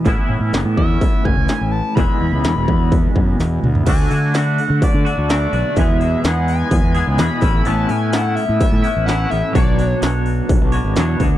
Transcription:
<<
  \new Staff \with { instrumentName = "Analog synth lead" } { \time 4/4 \key a \major \tempo 4 = 127 r4. e''4 gis''4 a''8 | b''2. r4 | gis''4 fis''4 d''4 d''4 | e''4 fis''8 gis''4. b''4 |
a''8 gis''8 fis''8 e''8 e''4 fis''8 e''8 | d''4 r2. | }
  \new Staff \with { instrumentName = "Clean electric guitar" } { \time 4/4 \key a \major <a, e b cis' e'>1 | <e, b, e gis b e'>1 | <d a d' fis'>8 <a d' fis'>8 <d a d' fis'>4. <a d' fis'>8 <d a d' fis'>8 <a d' fis'>8 | <e, b, e gis b gis'>8 <e gis b gis'>8 <e gis b gis'>4. <e gis b gis'>8 <e, b, e gis b gis'>8 <a b cis' e'>8 |
<a, a b cis' e'>8 <b cis' e'>8 <a b cis' e'>4. <b cis' e'>8 <a, a b cis' e'>8 <b cis' e'>8 | <b, fis b d' fis' cis''>8 <b d' fis' cis''>8 <b d' fis' cis''>4. <b d' fis' cis''>8 <b, fis b d' fis' cis''>8 <b d' fis' cis''>8 | }
  \new Staff \with { instrumentName = "Fingered electric bass" } { \clef bass \time 4/4 \key a \major a,,16 r16 a,16 a,16 fis,,16 a,16 e,8 r8 fis,,16 cis,16 r16 a,,8 r16 | e,,16 r16 e,16 cis,16 e,16 e,,16 e,4 fis,8 e,8 d,8 | d,8 d4~ d16 d16 r16 d16 r16 d,8. b,,16 r16 | e,4 e,4 e,16 e,8 cis,16 e,16 r16 a,,8 |
a,,8 a,4~ a,16 a,16 r16 a,16 r16 a,,8. a,,16 r16 | b,,4 b,,4 b,,16 b,,8 gis,,16 e,8 d,8 | }
  \new DrumStaff \with { instrumentName = "Drums" } \drummode { \time 4/4 <hho bd>4 <hho sn>8 bd8 <hho bd>8 bd8 <hho sn>4 | <hho bd>4 <hho sn>8 bd8 <hho bd>8 bd8 <hho sn>8 toml16 tomfh16 | <cymc hho bd>8 hho8 <hho sn>8 hho8 <hho bd>8 hho8 <hho sn>8 hho8 | <hho bd>8 hho8 <hho sn>8 hho8 <hho bd>8 hho8 <hho sn>8 <hho bd>8 |
hho8 hho8 <hho sn>8 hho8 <hho bd>8 hho8 <hho sn>8 hho8 | <hho bd>8 hho8 <hho sn>8 hho8 <hho bd>8 hho8 <hho sn>8 <hho bd>8 | }
>>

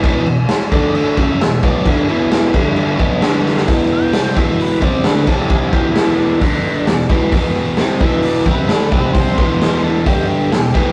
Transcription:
<<
  \new Staff \with { instrumentName = "Lead electric guitar" } { \time 4/4 \key e \minor \tempo 4 = 132 r4. d''8 e''4. d''8 | e'2. r4 | r8 g''4 e''8 b'8 d''8 b'8 a'8 | e'8 g'8 e'8 d'2 r8 |
r4. e''8 d''8 b'4. | c''4. a'8 g'2 | }
  \new Staff \with { instrumentName = "Overdriven electric guitar" } { \clef bass \time 4/4 \key e \minor <e, b, e>8 <e, b,>8 r8 <d a d'>4 <fis, cis fis>8 <e, b,>8 <b, fis b>8 | <g, d g>8 <e, b, e>4 <g, d g>4 <b, fis b>8 <g, d g>4 | <e, b, e>4 <c g c'>8 <e, b, e>4 <c g c'>8 <d a d'>8 <c g c'>8~ | <c g c'>8 <e, b, e>4. <g, d g>4 <e, b,>8 <e, b, e>8 |
<e, b, e>4 <c g c'>8 <e, b, e>4 <c g c'>8 <d a d'>8 <c g c'>8~ | <c g c'>8 <e, b, e>4. <g, d g>4 <e, b,>8 <e, b, e>8 | }
  \new DrumStaff \with { instrumentName = "Drums" } \drummode { \time 4/4 <cymc bd>8 cymc8 <cymc sn>8 <cymc bd>8 cymc8 <cymc bd>8 <cymc sn>8 <cymc bd>8 | <cymc bd>8 cymc8 <cymc sn>8 <cymc bd>8 cymc8 <cymc bd>8 <cymc sn>8 sn16 sn16 | <hho bd>4 <hho sn>8 bd8 hho8 bd8 <hho sn>8 <cymc bd>8 | bd8 bd8 <hho sn>4 <hho bd>4 <hho sn>8 bd8 |
<hho bd>4 <hho sn>8 bd8 hho8 bd8 <hho sn>8 bd8 | <hho bd>8 bd8 <hho sn>4 <hho bd>4 <hho sn>8 bd8 | }
>>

